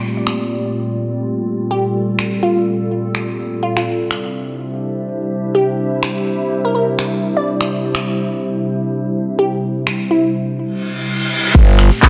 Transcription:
0.00 3.83 A#2 medium
0.00 3.87 G3 medium
0.00 3.83 A3 medium
0.00 5.25 C4 medium
0.00 3.87 F4 medium
0.00 3.83 G4 medium
0.00 0.35 D5 medium
0.00 5.48 D5 medium
0.27 finger snap medium
1.01 4.92 A4 medium
1.71 1.86 G4 medium
2.19 finger snap medium
2.43 3.11 F4 medium
3.15 finger snap medium
3.63 3.72 F4 medium
3.77 3.83 F4 medium
3.77 finger snap medium
3.87 11.51 C3 medium
3.87 11.51 G3 medium
3.87 10.59 D4 medium
3.87 11.51 E4 medium
4.04 10.59 C5 medium
4.04 10.59 E5 medium
4.11 finger snap medium
4.15 10.59 G4 medium
5.55 5.70 G4 medium
6.03 finger snap medium
6.65 6.71 A#4 medium
6.75 6.84 A#4 medium
6.99 finger snap medium
7.37 8.03 D5 medium
7.61 finger snap medium
7.95 finger snap medium
9.39 9.54 G4 medium
9.87 finger snap medium
10.11 10.59 E4 medium
10.59 reverse cymbal medium
11.55 11.90 G1 loud
11.55 12.09 A#2 medium
11.55 12.09 A3 medium
11.55 12.09 C4 medium
11.55 12.09 G4 loud
11.55 kick loud
11.55 closed hi-hat medium
11.55 downlifter medium
11.79 12.09 F4 medium
11.79 finger snap medium
11.79 open hi-hat loud
11.85 12.09 D5 medium
11.85 12.09 A#5 medium
11.93 closed hi-hat medium
12.02 kick loud
12.02 clap loud
12.02 closed hi-hat medium

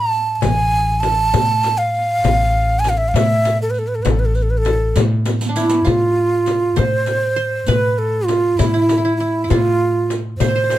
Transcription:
0.00 0.39 A2 medium
0.00 0.35 A5 loud
0.13 riq soft
0.35 0.43 A5 medium
0.42 1.30 A1 loud
0.42 1.02 G#5 loud
0.42 riq medium
0.42 frame drum loud
1.00 1.79 A5 loud
1.00 riq soft
1.00 frame drum medium
1.34 2.20 A2 medium
1.34 riq medium
1.34 frame drum loud
1.63 riq medium
1.63 frame drum medium
1.78 2.81 F5 loud
1.94 riq soft
2.24 3.11 A1 loud
2.24 riq medium
2.24 frame drum medium
2.79 2.91 G#5 medium
2.84 riq soft
2.84 frame drum medium
2.89 2.99 F5 medium
2.98 3.10 E5 medium
3.08 3.10 F5 medium
3.08 3.17 F5 medium
3.14 4.01 A2 loud
3.14 3.61 E5 loud
3.14 riq medium
3.14 frame drum loud
3.45 riq medium
3.45 frame drum medium
3.62 3.72 A4 medium
3.70 3.80 B4 medium
3.70 riq soft
3.79 3.89 A4 medium
3.88 3.97 B4 medium
3.95 4.04 A4 medium
4.03 4.92 A1 loud
4.03 4.11 B4 medium
4.03 riq medium
4.03 frame drum loud
4.10 4.21 A4 medium
4.19 4.27 B4 medium
4.25 4.37 A4 medium
4.35 4.44 B4 medium
4.35 riq soft
4.43 4.52 A4 medium
4.50 4.59 B4 medium
4.58 4.98 A4 medium
4.65 riq soft
4.65 frame drum medium
4.96 5.83 A2 loud
4.96 riq medium
4.96 frame drum loud
5.25 riq medium
5.25 frame drum medium
5.41 riq medium
5.49 6.98 D4 medium
5.56 5.91 E4 medium
5.56 5.90 E4 medium
5.56 riq medium
5.69 riq medium
5.85 6.74 A2 medium
5.85 7.19 F4 medium
5.85 6.80 F4 loud
5.85 riq medium
5.85 frame drum medium
6.46 riq soft
6.46 frame drum medium
6.76 7.65 A2 medium
6.76 7.36 C5 medium
6.76 7.70 C5 loud
6.76 riq medium
6.76 frame drum medium
7.06 riq soft
7.06 frame drum medium
7.36 7.74 C5 medium
7.67 8.55 A2 loud
7.67 8.00 B4 medium
7.67 8.77 B4 medium
7.67 riq medium
7.67 frame drum medium
7.98 8.27 A4 medium
8.25 8.59 F4 medium
8.25 riq soft
8.25 frame drum medium
8.58 9.46 A2 medium
8.58 9.16 E4 medium
8.58 8.66 E4 medium
8.58 riq medium
8.58 frame drum medium
8.66 8.73 E4 medium
8.74 8.81 E4 medium
8.82 8.89 E4 soft
8.89 8.97 E4 soft
8.89 riq medium
8.89 frame drum medium
8.98 9.04 E4 medium
9.05 9.20 E4 medium
9.17 9.51 E4 medium
9.17 9.44 E4 medium
9.44 9.57 E4 soft
9.49 10.37 A2 loud
9.49 10.14 F4 loud
9.49 10.79 F4 medium
9.49 riq medium
9.49 frame drum medium
10.10 riq medium
10.10 frame drum medium
10.38 10.79 A2 medium
10.38 10.79 C5 loud
10.38 10.48 C5 medium
10.38 riq medium
10.38 frame drum loud
10.48 10.55 C5 medium
10.56 10.64 C5 medium
10.64 10.69 C5 soft
10.70 10.76 C5 soft
10.70 riq medium
10.70 frame drum medium

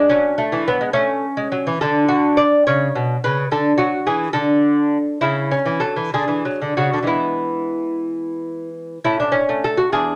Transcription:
0.09 0.42 F#3 medium
0.09 0.37 C#4 medium
0.38 0.66 A3 medium
0.52 0.66 E3 medium
0.67 0.80 F#3 medium
0.67 0.93 B3 medium
0.81 0.93 G#3 medium
0.93 1.25 A3 medium
0.93 1.75 C#4 medium
1.37 1.51 G#3 medium
1.52 1.65 F#3 medium
1.67 1.80 E3 medium
1.81 2.43 D3 medium
1.81 2.08 A4 medium
2.08 2.36 F#4 medium
2.37 2.64 D5 medium
2.67 2.87 C#3 medium
2.67 3.20 C#5 medium
2.95 3.15 B2 medium
3.24 3.44 C#3 medium
3.24 3.50 B4 medium
3.52 3.71 D3 medium
3.52 3.78 A4 medium
3.78 3.99 F#3 medium
3.78 4.05 F#4 medium
4.07 4.27 E3 medium
4.07 4.33 G#4 medium
4.33 4.96 D3 medium
4.33 5.17 A4 medium
5.21 5.54 C#3 medium
5.21 5.50 E4 medium
5.51 5.80 C#4 medium
5.65 5.80 E3 medium
5.80 5.95 F#3 medium
5.80 6.10 A4 medium
5.96 6.11 E3 soft
6.14 6.27 D3 medium
6.14 6.74 G#4 medium
6.28 6.42 E3 soft
6.45 6.59 F#3 medium
6.62 6.76 D3 soft
6.77 6.92 C#3 soft
6.77 7.07 F#4 medium
6.93 7.02 D3 soft
7.03 8.97 E3 soft
7.03 8.98 G#3 soft
7.07 8.99 B3 soft
7.07 8.68 E4 medium
9.04 9.40 A2 medium
9.04 9.31 C#4 soft
9.04 9.19 E4 medium
9.20 9.34 D4 medium
9.32 9.61 C#4 medium
9.49 9.84 A3 medium
9.64 9.78 A4 medium
9.77 9.92 F#4 medium
9.92 10.15 E2 medium
9.92 10.15 D4 soft
9.92 10.15 G#4 medium

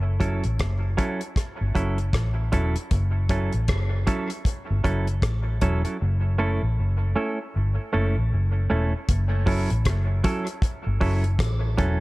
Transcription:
0.00 0.40 F#1 medium
0.20 0.43 F#3 medium
0.20 0.43 C#4 medium
0.20 0.43 E4 medium
0.20 0.43 A4 medium
0.20 kick medium
0.20 closed hi-hat medium
0.44 0.59 A1 medium
0.44 closed hi-hat soft
0.59 0.96 F#1 medium
0.59 kick loud
0.59 cross-stick loud
0.59 closed hi-hat medium
0.97 1.20 F#3 medium
0.97 1.20 C#4 medium
0.97 1.20 E4 medium
0.97 1.21 A4 medium
0.97 kick medium
0.97 closed hi-hat medium
1.21 closed hi-hat soft
1.36 kick loud
1.36 cross-stick medium
1.36 closed hi-hat medium
1.61 1.75 G1 medium
1.75 2.11 F#1 medium
1.75 1.97 F#3 medium
1.75 1.98 C#4 medium
1.75 1.98 E4 medium
1.75 1.98 A4 medium
1.75 kick medium
1.75 closed hi-hat medium
1.98 closed hi-hat soft
2.13 2.50 A1 medium
2.13 kick loud
2.13 cross-stick loud
2.13 closed hi-hat medium
2.52 2.74 E1 medium
2.52 2.75 F#3 medium
2.52 2.75 C#4 medium
2.52 2.75 E4 medium
2.52 2.75 A4 medium
2.52 kick medium
2.52 closed hi-hat medium
2.76 closed hi-hat medium
2.91 3.49 F#1 loud
2.91 kick loud
2.91 closed hi-hat medium
3.29 3.52 F#3 medium
3.29 3.52 C#4 medium
3.29 3.52 E4 medium
3.29 3.52 A4 medium
3.29 kick loud
3.29 closed hi-hat medium
3.53 3.68 A1 medium
3.53 closed hi-hat soft
3.68 4.04 F#1 medium
3.68 kick loud
3.68 cross-stick loud
3.68 closed hi-hat medium
4.07 4.29 F#3 medium
4.07 4.29 C#4 medium
4.07 4.29 E4 medium
4.07 4.30 A4 medium
4.07 kick medium
4.07 closed hi-hat medium
4.30 closed hi-hat soft
4.45 kick loud
4.45 closed hi-hat medium
4.70 4.84 G1 medium
4.84 5.20 F#1 medium
4.84 5.06 F#3 medium
4.84 5.06 C#4 medium
4.84 5.07 E4 medium
4.84 5.07 A4 medium
4.84 kick medium
4.84 closed hi-hat medium
5.07 closed hi-hat soft
5.22 5.58 A1 medium
5.22 kick loud
5.22 cross-stick loud
5.22 closed hi-hat medium
5.61 5.83 E1 medium
5.61 5.84 F#3 medium
5.61 5.84 C#4 medium
5.61 5.83 E4 medium
5.61 5.83 A4 medium
5.61 kick medium
5.61 closed hi-hat medium
5.84 5.97 F#3 soft
5.84 5.97 C#4 soft
5.84 5.96 E4 soft
5.84 5.96 A4 soft
5.84 closed hi-hat medium
6.02 6.58 F#1 loud
6.38 6.61 A3 medium
6.38 6.61 C#4 medium
6.38 6.61 E4 medium
6.38 6.61 A4 medium
6.63 6.77 A1 medium
6.79 7.14 F#1 medium
7.16 7.38 A3 medium
7.16 7.38 C#4 medium
7.16 7.38 E4 medium
7.16 7.38 A4 medium
7.56 7.76 G1 medium
7.93 8.15 F#1 medium
7.93 8.15 A3 medium
7.93 8.15 C#4 medium
7.93 8.15 E4 medium
7.93 8.16 A4 medium
8.18 8.31 A1 medium
8.33 8.68 F#1 medium
8.70 8.92 E1 medium
8.70 8.92 A3 medium
8.70 8.92 C#4 medium
8.70 8.93 E4 medium
8.70 8.93 A4 medium
9.09 9.66 F#1 loud
9.09 kick loud
9.09 closed hi-hat medium
9.46 9.69 F#3 medium
9.46 9.69 C#4 medium
9.46 9.69 E4 medium
9.46 9.70 A4 medium
9.46 kick loud
9.46 open hi-hat medium
9.70 9.85 A1 medium
9.70 closed hi-hat soft
9.85 10.22 F#1 loud
9.85 kick loud
9.85 cross-stick loud
9.85 closed hi-hat medium
10.24 10.46 F#3 medium
10.24 10.46 C#4 medium
10.24 10.47 E4 medium
10.24 10.47 A4 loud
10.24 kick medium
10.24 closed hi-hat medium
10.47 closed hi-hat medium
10.62 kick loud
10.62 closed hi-hat medium
10.87 11.00 G1 medium
11.01 11.37 F#1 medium
11.01 11.23 F#3 medium
11.01 11.23 C#4 medium
11.01 11.23 E4 medium
11.01 11.24 A4 medium
11.01 kick medium
11.01 open hi-hat soft
11.24 closed hi-hat soft
11.39 11.75 A1 medium
11.39 kick loud
11.39 cross-stick loud
11.39 closed hi-hat medium
11.77 12.00 E1 medium
11.77 12.00 F#3 medium
11.77 12.00 C#4 medium
11.77 11.99 E4 medium
11.77 11.99 A4 medium
11.77 kick medium
11.77 closed hi-hat medium

